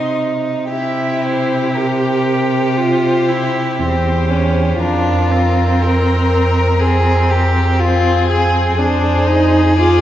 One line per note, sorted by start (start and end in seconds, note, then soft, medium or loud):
0.00 0.59 C3 soft
0.00 0.71 D#4 soft
0.00 0.17 D#5 soft
0.00 0.16 C6 soft
0.70 3.80 C3 soft
0.70 1.79 E4 soft
0.70 4.77 G4 soft
0.70 1.26 E5 soft
1.24 1.77 C5 medium
1.75 2.79 G4 soft
1.75 2.77 A#4 soft
2.75 3.30 F4 medium
2.75 3.78 C5 soft
3.28 3.80 E4 soft
3.79 4.79 E2 soft
3.79 4.31 C4 soft
3.79 4.82 C5 soft
4.30 4.81 C#4 medium
4.79 8.73 F2 medium
4.79 5.33 D4 medium
4.79 5.83 F4 soft
4.79 7.80 A#4 soft
5.32 6.80 C4 medium
5.82 6.81 A#4 soft
6.80 8.80 C4 medium
6.80 7.32 G#4 medium
7.31 7.81 G4 medium
7.79 8.28 F4 medium
7.79 8.80 G#4 medium
8.29 8.77 G#4 medium
8.77 10.01 F2 medium
8.77 9.29 D4 medium
8.77 10.01 G#4 medium
8.77 9.78 C5 medium
9.27 9.77 D#4 medium
9.77 10.01 F4 medium
9.77 10.01 D5 soft